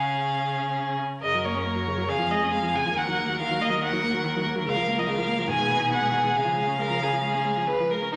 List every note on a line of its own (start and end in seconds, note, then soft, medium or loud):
0.00 0.99 C#3 soft
0.00 1.00 C#4 soft
0.00 1.00 G#4 soft
0.00 0.79 F5 soft
1.22 2.11 F#2 soft
1.22 1.36 C#3 soft
1.22 2.10 A#4 soft
1.22 1.46 D#5 medium
1.35 1.47 F#3 soft
1.45 1.56 A#3 soft
1.45 1.66 C#5 soft
1.55 1.67 C#4 soft
1.66 1.78 A#3 soft
1.66 2.11 C#5 soft
1.76 1.89 F#3 soft
1.88 1.99 C#3 soft
1.98 2.08 F#3 soft
2.08 2.95 F2 soft
2.08 2.20 C#3 soft
2.08 2.96 G#4 soft
2.08 2.33 F5 medium
2.18 2.32 F3 soft
2.31 2.43 G#3 soft
2.31 2.52 D#5 soft
2.41 2.54 C#4 soft
2.52 2.65 G#3 soft
2.52 2.77 F5 soft
2.63 2.76 F3 soft
2.74 2.88 C#3 soft
2.74 2.99 G#5 medium
2.86 2.96 F3 soft
2.96 4.68 D#2 soft
2.96 3.10 D#3 soft
2.96 5.51 A#4 soft
2.96 3.39 F#5 medium
3.08 3.19 F#3 soft
3.18 3.31 A#3 soft
3.29 3.42 F#3 soft
3.40 3.52 D#3 soft
3.40 3.63 F5 medium
3.50 3.62 F#3 soft
3.61 3.72 A#3 soft
3.61 3.83 D#5 medium
3.70 3.80 F#3 soft
3.81 3.94 D#3 soft
3.81 4.45 F#5 medium
3.93 4.05 F#3 soft
4.03 4.15 A#3 soft
4.14 4.26 F#3 soft
4.25 4.38 D#3 soft
4.36 4.47 F#3 soft
4.46 4.57 A#3 soft
4.56 4.66 F#3 soft
4.67 5.51 C#2 soft
4.67 4.78 C#3 soft
4.67 5.00 F5 medium
4.76 4.89 F3 soft
4.88 4.99 A#3 soft
4.98 5.09 F3 soft
4.98 5.08 D#5 medium
5.07 5.19 C#3 soft
5.07 5.50 F5 medium
5.18 5.30 F3 soft
5.28 5.40 A#3 soft
5.39 5.48 F3 soft
5.49 6.38 B2 soft
5.49 5.60 D#3 soft
5.49 6.75 G#4 soft
5.49 5.91 G#5 medium
5.58 5.71 G#3 soft
5.70 5.81 B3 soft
5.79 5.91 D#4 soft
5.90 6.02 B3 soft
5.90 6.37 F#5 medium
6.01 6.12 G#3 soft
6.11 6.25 D#3 soft
6.23 6.33 G#3 soft
6.34 6.46 C#3 soft
6.34 7.93 C#3 soft
6.34 7.91 F5 soft
6.45 6.58 F3 soft
6.56 6.69 G#3 soft
6.68 6.80 C#4 soft
6.79 6.91 G#3 soft
6.79 7.04 A#4 soft
6.90 7.03 F3 soft
7.02 7.14 C#3 soft
7.02 7.24 G#4 soft
7.13 7.22 F3 soft
7.23 7.36 G#3 soft
7.23 7.69 G#4 soft
7.34 7.47 C#4 soft
7.45 7.58 G#3 soft
7.57 7.69 F3 soft
7.67 7.82 C#3 soft
7.67 7.92 B4 soft
7.80 7.92 F3 soft
7.90 8.03 G#3 soft
7.90 8.12 A#4 soft
8.02 8.12 C#4 soft
8.12 8.16 C#4 soft
8.12 8.16 D#4 medium